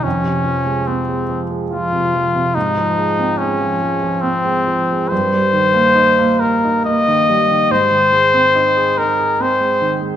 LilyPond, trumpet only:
\new Staff \with { instrumentName = "Trumpet" } { \time 3/4 \key f \minor \tempo 4 = 71 des'4 c'8 r8 f'4 | ees'4 des'4 c'4 | c''4. bes'8 ees''4 | c''4. bes'8 c''8 r8 | }